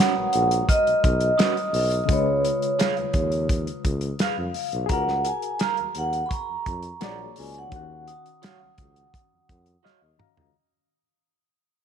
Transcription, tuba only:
0.17 0.23 A#1 soft
0.35 0.60 A#1 medium
0.87 0.93 B1 medium
1.04 1.30 B1 medium
1.73 2.00 B1 loud
2.09 2.49 C#2 loud
2.97 3.04 D#2 soft
3.14 3.67 D#2 medium
3.85 4.11 C#2 medium
4.20 4.27 F2 soft
4.37 4.50 F2 medium
4.73 4.86 B1 loud
4.90 5.30 C#2 loud
5.79 5.86 D#2 soft
5.96 6.22 D#2 medium
6.50 6.56 F2 medium
6.67 6.93 F2 loud
7.02 7.28 A#1 medium
7.38 7.64 C#2 medium
7.72 8.12 D#2 medium
8.62 8.69 C#2 soft
8.78 9.05 C#2 medium
9.33 9.39 F2 soft
9.49 9.76 F2 medium
9.85 9.92 D#2 soft
10.01 10.15 D#2 medium
10.38 10.51 C#2 medium

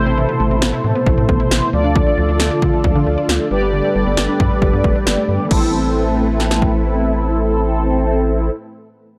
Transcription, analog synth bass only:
0.00 0.26 A1 loud
0.40 0.50 A1 loud
0.51 0.61 A1 loud
0.62 0.72 A1 loud
0.84 0.95 A2 medium
1.06 1.17 A1 loud
1.18 1.28 A2 medium
1.29 1.39 A1 medium
1.51 1.61 A1 medium
1.73 2.04 D2 loud
2.18 2.28 D2 loud
2.29 2.39 D2 loud
2.40 2.50 D2 loud
2.62 2.72 D3 medium
2.84 2.94 D2 loud
2.95 3.06 D3 medium
3.07 3.17 D2 medium
3.29 3.39 D2 loud
3.51 3.81 G1 loud
3.95 4.06 G1 loud
4.07 4.17 G1 loud
4.18 4.28 G1 loud
4.40 4.50 G2 medium
4.62 4.72 G1 loud
4.73 4.83 G2 medium
4.84 4.94 G1 medium
5.06 5.17 G1 loud
5.29 5.39 G2 medium
5.51 8.50 A1 loud

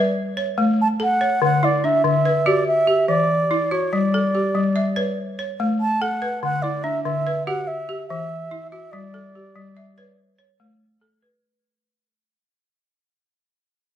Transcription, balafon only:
0.00 0.16 B4 medium
0.00 0.37 E5 medium
0.37 1.00 C#5 medium
0.58 1.00 A3 medium
1.00 1.42 A4 medium
1.21 1.63 C#5 medium
1.42 1.84 D3 medium
1.63 2.26 E4 medium
1.84 2.47 D4 medium
2.04 2.46 D3 medium
2.25 2.88 B4 medium
2.46 2.67 F#4 medium
2.46 2.86 G4 medium
2.87 3.50 G4 medium
3.08 3.50 E3 medium
3.51 3.93 E4 medium
3.71 4.13 F#4 medium
3.93 4.34 G3 medium
4.14 4.76 A4 medium
4.35 4.97 G4 medium
4.55 4.97 G3 medium
4.76 5.39 E5 medium
4.96 5.18 B4 medium
4.96 5.38 C#5 medium
5.39 6.01 C#5 medium
5.60 6.01 A3 medium
6.02 6.43 A4 medium
6.22 6.64 B4 medium
6.43 6.85 D3 medium
6.64 7.26 E4 medium
6.84 7.47 D4 medium
7.05 7.47 D3 medium
7.27 7.89 B4 medium
7.47 7.68 F#4 medium
7.47 7.88 G4 medium
7.89 8.51 G4 medium
8.10 8.52 E3 medium
8.51 8.93 E4 medium
8.72 9.14 F#4 medium
8.93 9.35 G3 medium
9.14 9.77 A4 medium
9.35 9.98 G4 medium
9.56 9.97 G3 medium
9.77 10.39 E5 medium
9.98 10.18 B4 medium
9.98 10.37 C#5 medium
10.39 11.01 C#5 medium
10.60 11.01 A3 medium
11.01 11.43 A4 medium
11.22 11.64 B4 medium

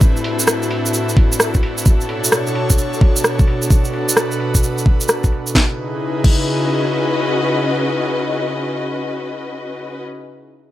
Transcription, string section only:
0.00 5.55 D4 medium
0.00 5.55 E4 medium
0.00 5.55 A4 medium
1.86 5.55 B3 medium
3.33 5.55 F#5 medium
5.55 10.00 C#4 medium
5.64 10.00 F#4 medium
5.72 10.00 B4 medium
5.77 10.01 D#5 medium

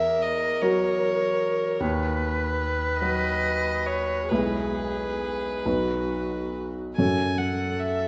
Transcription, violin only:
0.00 0.23 E5 medium
0.22 0.63 D#5 medium
0.61 1.80 C#5 medium
3.01 3.87 D#5 medium
3.85 4.30 C#5 medium
4.29 6.55 B4 soft
6.97 7.39 G#5 medium
7.38 7.81 F#5 soft
7.79 8.08 E5 soft

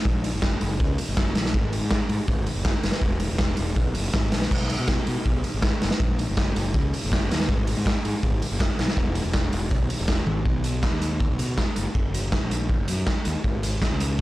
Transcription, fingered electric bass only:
0.05 0.30 A#1 loud
0.34 0.58 F#1 medium
0.61 0.78 F#1 medium
0.80 0.97 C#2 medium
1.09 1.33 F#1 medium
1.36 1.52 A#1 medium
1.54 1.79 G#1 loud
1.81 1.98 G#2 loud
2.09 2.18 G#2 medium
2.28 2.45 G#1 loud
2.56 2.73 F#1 medium
2.83 2.92 F#1 medium
3.02 3.27 E1 loud
3.31 3.56 E1 medium
3.59 3.75 E1 medium
3.77 3.93 B1 loud
3.96 4.13 F#1 medium
4.14 4.31 G#1 medium
4.34 4.50 A#1 medium
4.51 4.76 B1 loud
4.79 4.96 B2 medium
5.08 5.16 B2 medium
5.26 5.43 B1 loud
5.54 5.71 G#1 medium
5.83 5.91 F#1 medium
6.00 6.25 A#1 loud
6.29 6.54 F#1 medium
6.56 6.73 F#1 medium
6.75 6.91 C#2 loud
7.04 7.28 F#1 medium
7.31 7.48 D#2 medium
7.49 7.74 G#1 loud
7.77 7.94 G#2 loud
8.05 8.13 G#2 medium
8.24 8.40 G#1 medium
8.52 8.68 F#1 medium
8.79 8.88 B1 medium
8.97 9.22 E1 loud
9.26 9.50 E1 medium
9.53 9.70 E1 medium
9.72 9.89 B1 loud
9.99 10.24 E1 medium
10.26 10.44 G#1 medium
10.46 10.87 B1 medium
10.92 11.26 D#2 medium
11.31 11.39 B1 medium
11.39 11.56 B2 medium
11.78 11.86 F#1 loud
11.95 12.37 F#1 medium
12.42 12.75 A#1 medium
12.79 12.88 F#1 medium
12.89 13.06 F#2 medium
13.27 13.35 D#2 medium
13.44 13.86 G#1 medium
13.92 14.21 C#2 medium

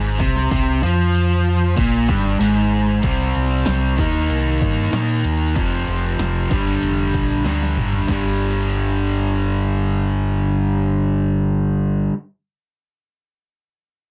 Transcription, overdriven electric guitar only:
0.00 0.18 G#2 loud
0.19 0.50 C3 loud
0.51 0.82 C3 loud
0.83 1.76 F3 loud
1.76 2.07 A#2 loud
2.09 2.39 G2 loud
2.40 3.02 G#2 loud
3.02 3.95 C3 medium
3.02 3.96 G3 medium
3.02 3.97 C4 medium
3.97 4.90 D#3 medium
3.97 4.91 A#3 loud
3.97 4.92 D#4 loud
4.91 5.53 D#3 medium
4.91 5.54 A#3 medium
4.91 5.55 D#4 medium
5.54 6.48 F2 medium
5.54 6.48 C3 medium
5.54 6.49 F3 medium
6.49 7.43 G2 medium
6.49 7.43 D3 medium
6.49 7.44 G3 loud
7.45 8.06 G2 medium
7.45 8.07 D3 medium
7.45 8.08 G3 medium
8.07 12.11 G2 medium
8.07 12.12 D3 medium
8.07 12.13 G3 medium

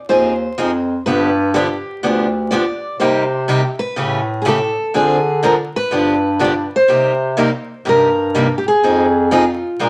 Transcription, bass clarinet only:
0.09 0.50 D#2 medium
0.57 0.98 F2 medium
1.05 1.83 G2 medium
2.02 2.64 D2 medium
2.99 3.77 C3 medium
3.97 4.75 A2 medium
4.94 5.72 D3 medium
5.90 6.68 G2 medium
6.88 7.49 C3 medium
7.86 8.63 G2 medium
8.82 9.60 F2 loud
9.79 9.89 A#2 medium

